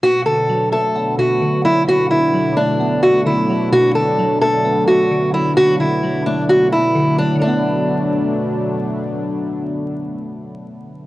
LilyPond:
<<
  \new Staff \with { instrumentName = "Steel-string acoustic guitar" } { \time 4/4 \key b \minor \tempo 4 = 130 fis'8 a'4 a'4 fis'4 e'8 | fis'8 e'4 d'4 fis'8 e'4 | fis'8 a'4 a'4 fis'4 e'8 | fis'8 e'4 d'8 fis'8 e'4 d'8 |
d'2. r4 | r1 | }
  \new Staff \with { instrumentName = "Analog synth pad" } { \clef bass \time 4/4 \key b \minor <b, fis a d'>1~ | <b, fis a d'>1~ | <b, fis a d'>1~ | <b, fis a d'>1 |
<b, fis a d'>1~ | <b, fis a d'>1 | }
  \new Staff \with { instrumentName = "Synth keys" } { \clef bass \time 4/4 \key b \minor b,8 d8 fis8 a8 b8 b,8 d8 fis8 | b,8 d8 fis8 a8 b8 b,8 d8 fis8 | b,8 d8 fis8 a8 b8 b,8 d8 fis8 | b,8 d8 fis8 a8 b8 b,8 d8 fis8 |
<d fis a b>1~ | <d fis a b>1 | }
>>